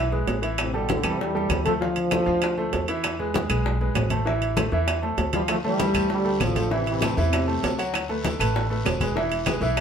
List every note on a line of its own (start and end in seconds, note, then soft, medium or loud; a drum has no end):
0.00 0.24 B1 medium
0.12 0.37 G#3 medium
0.12 0.37 G#4 medium
0.12 0.38 B4 medium
0.12 high bongo soft
0.12 high conga soft
0.27 0.99 A1 medium
0.27 high bongo soft
0.27 low bongo medium
0.27 high conga soft
0.27 high timbale medium
0.27 low timbale medium
0.42 0.68 E3 medium
0.42 0.68 E4 medium
0.42 0.68 E5 medium
0.42 high timbale medium
0.58 0.74 A2 medium
0.58 0.74 C3 medium
0.58 high bongo medium
0.58 high conga soft
0.58 high timbale loud
0.58 claves medium
0.73 0.89 B2 medium
0.73 0.88 D3 medium
0.73 0.99 G3 medium
0.73 0.99 G4 medium
0.73 0.99 A4 medium
0.73 high bongo soft
0.73 high conga soft
0.89 1.04 A2 medium
0.89 1.04 D3 medium
0.89 high bongo medium
0.89 high conga medium
0.89 high timbale medium
0.89 low timbale medium
1.03 1.46 E2 medium
1.03 1.21 C3 medium
1.03 1.20 E3 medium
1.03 1.29 G3 medium
1.03 1.29 G4 medium
1.03 1.29 A4 medium
1.03 high bongo soft
1.03 high conga soft
1.03 high timbale medium
1.03 claves medium
1.20 1.67 E3 medium
1.20 1.66 G3 loud
1.20 high bongo medium
1.20 high conga soft
1.35 1.60 G3 medium
1.35 1.60 G4 medium
1.35 1.60 A4 medium
1.35 high bongo soft
1.35 high conga soft
1.49 2.21 D2 medium
1.49 high bongo soft
1.49 low bongo medium
1.49 high conga medium
1.49 high timbale medium
1.49 low timbale medium
1.49 claves medium
1.65 1.74 F3 medium
1.65 1.72 A3 loud
1.65 1.78 A3 medium
1.65 1.78 A4 medium
1.65 1.78 C5 medium
1.65 high conga medium
1.65 high timbale medium
1.81 2.85 D3 medium
1.81 2.06 F3 medium
1.81 2.84 F3 loud
1.81 2.06 F4 medium
1.81 2.06 F5 medium
1.81 high bongo medium
1.81 high conga soft
1.96 high bongo soft
1.96 high conga soft
1.96 high timbale medium
2.11 2.24 A3 medium
2.11 2.24 A4 medium
2.11 2.24 C5 medium
2.11 high bongo medium
2.11 high conga medium
2.11 high timbale medium
2.11 low timbale medium
2.11 claves medium
2.26 2.69 D2 medium
2.26 2.52 F3 medium
2.26 2.52 F4 medium
2.26 2.52 F5 medium
2.26 high bongo soft
2.42 high bongo medium
2.42 high conga soft
2.42 high timbale medium
2.42 claves medium
2.57 2.83 A3 medium
2.57 2.83 A4 medium
2.57 2.83 C5 medium
2.57 high bongo soft
2.57 high conga soft
2.73 3.44 E2 medium
2.73 high bongo soft
2.73 low bongo medium
2.73 high conga soft
2.73 high timbale medium
2.73 low timbale medium
2.88 3.14 E3 medium
2.88 3.14 E4 medium
2.88 3.14 E5 medium
2.88 high timbale medium
3.04 high bongo medium
3.04 high conga soft
3.04 high timbale loud
3.04 claves medium
3.19 3.44 G#3 medium
3.19 3.44 G#4 medium
3.19 3.45 B4 medium
3.19 high bongo soft
3.19 high conga soft
3.34 high bongo medium
3.34 high conga medium
3.34 high timbale medium
3.34 low timbale medium
3.49 3.92 B1 loud
3.49 3.75 G#3 medium
3.49 3.75 G#4 medium
3.49 3.75 B4 medium
3.49 high bongo soft
3.49 high conga soft
3.49 high timbale medium
3.49 claves medium
3.66 high bongo medium
3.66 high conga soft
3.81 4.06 G#3 medium
3.81 4.06 G#4 medium
3.81 4.06 B4 medium
3.81 high bongo soft
3.81 high conga soft
3.94 4.66 A1 medium
3.94 high bongo soft
3.94 low bongo medium
3.94 high conga medium
3.94 high timbale medium
3.94 low timbale medium
3.94 claves medium
4.10 4.23 A3 medium
4.10 4.24 A4 medium
4.10 4.24 C5 medium
4.10 high conga medium
4.10 high timbale medium
4.25 4.51 E3 medium
4.25 4.51 E4 medium
4.25 4.51 E5 medium
4.25 high bongo medium
4.25 high conga soft
4.42 high bongo soft
4.42 high conga soft
4.42 high timbale medium
4.56 4.69 A3 medium
4.56 4.69 A4 medium
4.56 4.69 C5 medium
4.56 high bongo medium
4.56 high conga medium
4.56 high timbale medium
4.56 low timbale medium
4.56 claves medium
4.72 5.15 E2 loud
4.72 4.97 E3 medium
4.72 4.97 E4 medium
4.72 4.98 E5 medium
4.72 high bongo soft
4.88 high bongo medium
4.88 high conga soft
4.88 high timbale medium
4.88 claves medium
5.02 5.27 A3 medium
5.02 5.28 A4 medium
5.02 5.28 C5 medium
5.02 high bongo soft
5.02 high conga soft
5.17 5.89 D2 medium
5.17 high bongo soft
5.17 low bongo medium
5.17 high conga soft
5.17 high timbale medium
5.17 low timbale medium
5.33 5.41 E3 medium
5.33 5.58 F3 medium
5.33 5.41 G3 medium
5.33 5.59 F4 medium
5.33 5.59 F5 medium
5.33 high conga medium
5.33 high timbale medium
5.48 5.56 F3 medium
5.48 5.55 A3 medium
5.48 high bongo medium
5.48 high conga soft
5.48 high timbale loud
5.48 long guiro medium
5.48 claves medium
5.64 6.08 E3 medium
5.64 6.07 G3 loud
5.64 5.89 A3 medium
5.64 5.89 A4 medium
5.64 5.89 C5 medium
5.64 high bongo soft
5.64 high conga soft
5.79 high bongo medium
5.79 high conga medium
5.79 high timbale medium
5.79 low timbale medium
5.79 short guiro medium
5.94 6.37 D2 loud
5.94 6.20 A3 medium
5.94 6.20 A4 medium
5.94 6.20 C5 medium
5.94 high bongo soft
5.94 high conga soft
5.94 high timbale medium
5.94 short guiro medium
5.94 claves medium
6.09 6.39 D3 medium
6.09 6.39 G3 loud
6.09 high bongo medium
6.09 high conga soft
6.09 long guiro medium
6.24 6.50 A3 medium
6.24 6.50 A4 medium
6.24 6.50 C5 medium
6.24 high bongo soft
6.24 high conga soft
6.40 7.11 A1 medium
6.40 6.70 D3 medium
6.40 6.70 F3 medium
6.40 high bongo soft
6.40 low bongo medium
6.40 high conga medium
6.40 high timbale medium
6.40 low timbale medium
6.40 short guiro medium
6.40 claves medium
6.55 6.68 A3 medium
6.55 6.68 A4 medium
6.55 6.68 C5 medium
6.55 high conga medium
6.55 high timbale medium
6.55 short guiro medium
6.71 6.87 C3 medium
6.71 6.96 E3 medium
6.71 6.87 E3 medium
6.71 6.96 E4 medium
6.71 6.96 E5 medium
6.71 high bongo medium
6.71 high conga soft
6.71 long guiro medium
6.86 7.16 C3 medium
6.86 7.16 E3 medium
6.86 high bongo soft
6.86 high conga soft
6.86 high timbale medium
7.01 7.14 A3 medium
7.01 7.14 A4 medium
7.01 7.15 C5 medium
7.01 high bongo medium
7.01 high conga medium
7.01 high timbale medium
7.01 low timbale medium
7.01 short guiro medium
7.01 claves medium
7.17 7.60 E2 loud
7.17 7.79 A2 medium
7.17 7.79 C3 medium
7.17 7.42 E3 medium
7.17 7.43 E4 medium
7.17 7.43 E5 medium
7.17 high bongo soft
7.17 short guiro medium
7.33 high bongo medium
7.33 high conga soft
7.33 high timbale medium
7.33 long guiro medium
7.33 claves medium
7.47 7.73 A3 medium
7.47 7.73 A4 medium
7.47 7.73 C5 medium
7.47 high bongo soft
7.47 high conga soft
7.63 8.34 D2 medium
7.63 high bongo soft
7.63 low bongo medium
7.63 high conga soft
7.63 high timbale medium
7.63 low timbale medium
7.63 short guiro medium
7.78 8.03 F#3 medium
7.78 8.03 F#4 medium
7.78 8.04 F#5 medium
7.78 high timbale medium
7.78 short guiro medium
7.94 high bongo medium
7.94 high conga soft
7.94 high timbale medium
7.94 long guiro medium
7.94 claves medium
8.09 8.34 A3 medium
8.09 8.34 A4 medium
8.09 8.34 B4 medium
8.09 high bongo soft
8.09 high conga soft
8.24 high bongo medium
8.24 high conga medium
8.24 high timbale medium
8.24 low timbale medium
8.24 short guiro medium
8.39 8.82 A1 loud
8.39 8.64 A3 medium
8.39 8.65 A4 medium
8.39 8.65 B4 medium
8.39 high bongo soft
8.39 high conga soft
8.39 high timbale loud
8.39 short guiro medium
8.39 claves medium
8.55 high bongo medium
8.55 high conga soft
8.55 long guiro medium
8.70 8.95 A3 medium
8.70 8.95 A4 medium
8.70 8.95 B4 medium
8.70 high bongo soft
8.70 high conga soft
8.85 9.56 E1 medium
8.85 high bongo soft
8.85 low bongo medium
8.85 high conga medium
8.85 high timbale medium
8.85 low timbale medium
8.85 short guiro medium
8.85 claves medium
9.01 9.13 G#3 medium
9.01 9.13 G#4 medium
9.01 9.13 B4 medium
9.01 high conga medium
9.01 high timbale medium
9.01 short guiro medium
9.16 9.41 E3 medium
9.16 9.41 E4 medium
9.16 9.41 E5 medium
9.16 high bongo medium
9.16 high conga soft
9.16 long guiro medium
9.31 high bongo soft
9.31 high conga soft
9.31 high timbale medium
9.46 9.59 G#3 medium
9.46 9.59 G#4 medium
9.46 9.59 B4 medium
9.46 high bongo medium
9.46 high conga medium
9.46 high timbale medium
9.46 low timbale medium
9.46 short guiro medium
9.46 claves medium
9.61 9.80 B1 medium
9.61 9.80 E3 medium
9.61 9.80 E4 medium
9.61 9.80 E5 medium
9.61 high bongo soft
9.61 short guiro medium
9.77 high bongo medium
9.77 high conga soft
9.77 high timbale medium
9.77 claves medium